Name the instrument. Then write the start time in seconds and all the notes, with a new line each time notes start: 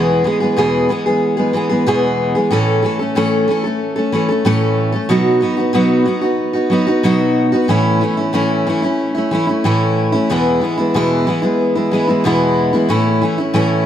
steel-string acoustic guitar
Already playing: E2 B2 E3 G#3 B3 G#4
0.24 E3 G#3 B3 G#4
0.40 E3 G#3 B3 G#4
0.56 E2 B2 E3 G#3 B3 G#4
0.89 E3 G#3 B3 G#4
1.06 E3 G#3 B3 G#4
1.37 E3 G#3 B3 G#4
1.53 E3 G#3 B3 G#4
1.69 E3 G#3 B3 G#4
1.86 E2 B2 E3 G#3 B3 G#4
2.35 E3 G#3 B3 G#4
2.51 A2 E3 A3 C#4 A4
2.83 E3 A3 C#4 A4
2.99 A3 C#4 A4
3.15 A2 E3 A3 C#4 A4
3.48 E3 A3 C#4 A4
3.64 A3 C#4 A4
3.96 A3 C#4 A4
4.12 E3 A3 C#4 A4
4.29 A3 C#4 A4
4.45 A2 E3 A3 C#4 A4
4.92 A3 C#4 A4
5.09 B2 F#3 B3 D#4 F#4
5.41 F#3 B3 D#4 F#4
5.57 B3 D#4 F#4
5.73 B2 F#3 B3 D#4 F#4
6.05 F#3 B3 D#4 F#4
6.21 B3 D#4 F#4
6.53 B3 D#4 F#4
6.70 F#3 B3 D#4 F#4
6.87 B3 D#4 F#4
7.03 B2 F#3 B3 D#4 F#4
7.52 B3 D#4 F#4
7.68 A2 E3 A3 C#4 E4
8.01 E3 A3 C#4 E4
8.17 A3 C#4 E4
8.33 A2 E3 A3 C#4 E4
8.67 E3 A3 C#4 E4
8.82 A3 C#4 E4
9.15 A3 C#4 E4
9.31 E3 A3 C#4 E4
9.47 A3 C#4 E4
9.64 A2 E3 A3 C#4 E4
10.12 A3 C#4 E4
10.30 E2 B2 E3 G#3 B3 E4
10.61 E3 G#3 B3 E4
10.78 E3 G#3 B3 E4
10.94 E2 B2 E3 G#3 B3 E4
11.27 E3 G#3 B3 E4
11.42 E3 G#3 B3 E4
11.75 E3 G#3 B3 E4
11.91 E3 G#3 B3 E4
12.07 E3 G#3 B3 E4
12.24 E2 B2 E3 G#3 B3 E4
12.73 E3 G#3 B3 E4
12.89 A2 E3 A3 C#4 E4
13.22 E3 A3 C#4 E4
13.38 A3 C#4 E4
13.54 A2 E3 A3 C#4 E4